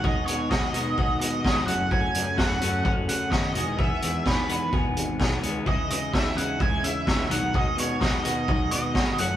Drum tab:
HH |-x-x-x-x|-x-x-x-x|-x-x-x-x|-x-x-x-x|
SD |--o---o-|--o---o-|--o---o-|--o---o-|
BD |o-o-o-o-|o-o-o-o-|o-o-o-o-|o-o-o-o-|

HH |-x-x-x-x|
SD |--o---o-|
BD |o-o-o-o-|